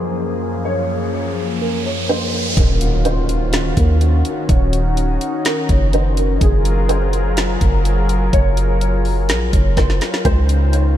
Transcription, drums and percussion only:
2.57 kick loud
2.57 closed hi-hat medium
2.81 closed hi-hat medium
3.05 closed hi-hat medium
3.29 closed hi-hat medium
3.53 snare loud
3.53 closed hi-hat medium
3.77 kick medium
3.77 closed hi-hat medium
4.01 closed hi-hat medium
4.25 closed hi-hat medium
4.49 kick loud
4.49 closed hi-hat medium
4.73 closed hi-hat medium
4.97 closed hi-hat medium
5.21 closed hi-hat medium
5.45 snare loud
5.45 closed hi-hat medium
5.69 kick medium
5.69 closed hi-hat medium
5.93 closed hi-hat medium
6.17 closed hi-hat medium
6.41 kick loud
6.41 closed hi-hat medium
6.65 closed hi-hat medium
6.89 closed hi-hat medium
7.13 closed hi-hat medium
7.37 snare loud
7.37 closed hi-hat medium
7.61 kick medium
7.61 closed hi-hat medium
7.85 closed hi-hat medium
8.09 closed hi-hat medium
8.33 kick loud
8.33 closed hi-hat medium
8.57 closed hi-hat medium
8.81 closed hi-hat medium
9.05 open hi-hat medium
9.29 snare loud
9.29 closed hi-hat medium
9.53 kick medium
9.53 closed hi-hat medium
9.77 kick medium
9.77 snare medium
9.77 closed hi-hat medium
9.90 snare medium
10.01 snare medium
10.01 closed hi-hat medium
10.14 snare medium
10.25 kick loud
10.25 closed hi-hat medium
10.49 closed hi-hat medium
10.73 closed hi-hat medium

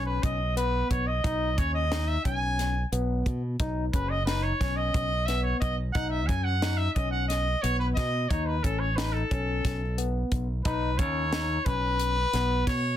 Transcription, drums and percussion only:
0.23 kick loud
0.23 closed hi-hat medium
0.57 closed hi-hat medium
0.91 kick medium
0.91 closed hi-hat medium
1.24 kick loud
1.24 closed hi-hat medium
1.58 kick medium
1.58 closed hi-hat medium
1.92 snare loud
1.92 closed hi-hat medium
2.25 kick medium
2.25 closed hi-hat medium
2.59 snare soft
2.59 closed hi-hat medium
2.93 closed hi-hat medium
3.26 kick medium
3.26 closed hi-hat medium
3.60 kick loud
3.60 closed hi-hat medium
3.93 kick medium
3.93 closed hi-hat medium
4.27 snare medium
4.27 closed hi-hat medium
4.61 kick medium
4.61 snare soft
4.61 closed hi-hat medium
4.94 kick loud
4.94 closed hi-hat medium
5.28 snare soft
5.28 closed hi-hat medium
5.62 kick medium
5.62 closed hi-hat medium
5.95 kick loud
5.95 closed hi-hat medium
6.29 kick medium
6.29 closed hi-hat medium
6.62 snare loud
6.62 closed hi-hat medium
6.96 kick medium
6.96 closed hi-hat medium
7.30 snare soft
7.30 closed hi-hat medium
7.64 closed hi-hat medium
7.97 kick medium
7.97 snare soft
7.97 closed hi-hat medium
8.31 kick loud
8.31 closed hi-hat medium
8.64 kick medium
8.64 closed hi-hat medium
8.98 snare loud
8.98 closed hi-hat medium
9.31 kick medium
9.31 closed hi-hat medium
9.65 kick loud
9.65 snare soft
9.65 closed hi-hat medium
9.98 closed hi-hat medium
10.32 kick medium
10.32 closed hi-hat medium
10.65 kick loud
10.65 closed hi-hat medium
10.99 kick medium
10.99 closed hi-hat medium
11.33 snare loud
11.33 closed hi-hat medium
11.66 kick medium
11.66 closed hi-hat medium
11.99 closed hi-hat medium
12.33 snare soft
12.33 closed hi-hat medium
12.67 kick medium
12.67 snare soft
12.67 closed hi-hat medium

